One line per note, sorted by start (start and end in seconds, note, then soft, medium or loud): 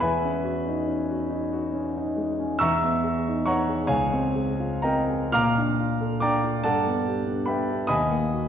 0.00 2.57 E2 medium
0.00 1.69 B4 medium
0.00 1.69 E5 medium
0.00 1.69 G#5 medium
0.00 1.73 B5 medium
0.24 0.58 C#4 soft
0.43 0.79 F#4 soft
0.67 1.02 D#4 soft
0.87 1.22 C#4 soft
1.09 1.44 F#4 soft
1.30 1.66 D#4 soft
1.53 1.88 F#4 soft
1.73 2.10 C#4 soft
1.97 2.32 D#4 soft
2.16 2.53 G#3 soft
2.39 2.62 C#4 soft
2.59 3.86 E2 medium
2.59 3.44 E5 medium
2.59 3.43 A#5 medium
2.59 3.43 C#6 medium
2.59 3.46 E6 loud
2.84 3.19 B3 soft
3.04 3.39 G#4 soft
3.27 3.61 D#4 soft
3.46 3.81 B3 soft
3.46 3.86 C#5 medium
3.46 3.87 F#5 medium
3.46 3.87 A#5 medium
3.46 3.89 C#6 medium
3.69 3.86 G#4 soft
3.87 5.28 C#2 medium
3.87 4.34 G#4 medium
3.87 4.79 C#5 medium
3.87 4.79 F5 medium
3.87 4.83 G#5 medium
4.13 4.50 C4 soft
4.35 4.74 G#4 medium
4.60 4.99 F4 soft
4.82 5.24 C4 soft
4.82 5.30 A#4 medium
4.82 5.29 D#5 medium
4.82 5.30 G5 medium
4.82 5.32 A#5 medium
5.09 5.33 G#4 soft
5.32 6.60 A#2 medium
5.32 6.18 F5 medium
5.32 6.18 A#5 medium
5.32 6.18 D6 medium
5.32 6.21 F6 loud
5.58 5.93 D4 soft
5.79 6.14 F4 soft
6.00 6.34 A4 soft
6.20 6.56 D4 soft
6.20 6.61 D5 medium
6.20 6.61 G5 medium
6.20 6.61 A#5 medium
6.20 6.63 D6 medium
6.43 6.64 F4 soft
6.64 7.87 G2 medium
6.64 7.45 A4 medium
6.64 7.44 D5 medium
6.64 7.44 F#5 medium
6.64 7.48 A5 medium
6.86 7.19 B3 soft
7.05 7.40 G4 soft
7.26 7.60 D4 soft
7.46 7.82 B3 soft
7.46 7.87 B4 medium
7.46 7.87 E5 soft
7.46 7.87 G5 medium
7.46 7.87 B5 medium
7.70 7.91 G4 soft
7.87 8.48 D#2 medium
7.87 8.48 D#5 medium
7.87 8.48 G#5 medium
7.87 8.48 B5 medium
7.87 8.48 D#6 loud
8.11 8.46 A#3 soft
8.34 8.48 F#4 soft